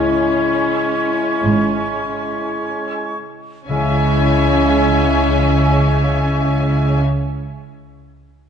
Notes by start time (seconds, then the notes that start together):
Already playing: C#2 C#3 G#3 C#4 E4 G#4 C#5 G#5 C#6
0.76 G#5 C#6 E6
1.44 G#1 G#2
2.92 G#5 C#6 E6
3.69 C#2 C#3 E3 G#3 C#4 E4 C#5 E5 G#5
3.76 C#4
3.83 E4
3.90 G#4
3.97 C#5
4.04 G#5